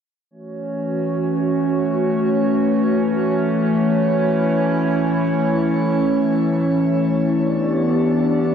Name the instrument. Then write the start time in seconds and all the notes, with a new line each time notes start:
ambient pad
0.31 E3 A3 C#4 F#4 C#5
3.78 E4
7.26 B3 D4 G4 D5